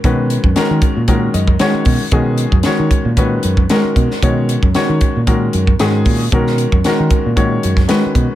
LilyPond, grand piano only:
\new Staff \with { instrumentName = "Grand piano" } { \time 4/4 \key b \major \tempo 4 = 114 << { r2 r8 dis''8 fis''4 | r1 | r1 | r1 | } \\ { <dis gis cis' fis' b'>4 <dis gis cis' fis' ais'>4 <dis gis cis' fis' ais'>4 <dis gis cis' fis' cis''>4 | <dis gis cis' fis' gis'>4 <dis gis cis' fis' cis''>4 <dis gis cis' fis' b'>4 <dis gis cis' fis' ais'>4 | <dis gis cis' fis' cis''>4 <dis gis cis' fis' cis''>4 <dis gis cis' fis' ais'>4 <dis gis cis' fis' gis'>4 | <dis gis cis' fis' ais'>4 <dis gis cis' fis' ais'>4 <dis gis cis' fis' cis''>4 <dis gis cis' fis' b'>4 | } >> }